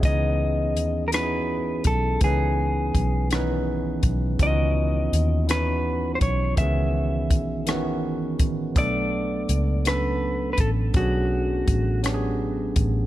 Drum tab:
HH |x-xx-x|x-xx-x|x-xx-x|x-xx-x|
SD |---r--|---r--|---r--|---r--|
BD |o----o|o-o--o|o----o|o-o--o|

HH |x-xx-x|x-xx-x|
SD |---r--|---r--|
BD |o----o|o-o--o|